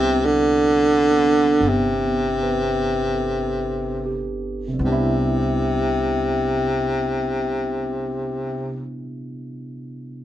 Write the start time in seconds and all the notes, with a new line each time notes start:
Already playing: C2 C3 G3 B3 C4 D4 E4 B4
0.25 D3
1.11 B3
1.15 D4
1.61 G1
1.69 C3
2.42 B4
3.15 A4
4.06 G4
4.68 C3
4.74 G3
4.79 C2 B3
4.84 C3 D4
4.92 E4